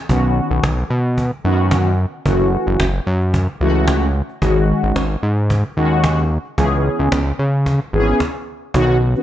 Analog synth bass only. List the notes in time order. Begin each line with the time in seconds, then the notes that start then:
0.09 B1
0.51 B1
0.64 B1
0.90 B2
1.45 F#2
2.26 F#1
2.67 F#1
2.80 F#1
3.07 F#2
3.61 C#2
4.42 G#1
4.83 G#1
4.96 G#1
5.23 G#2
5.77 D#2
6.58 C#2
6.99 C#2
7.12 C#2
7.39 C#3
7.93 G#1
8.74 B1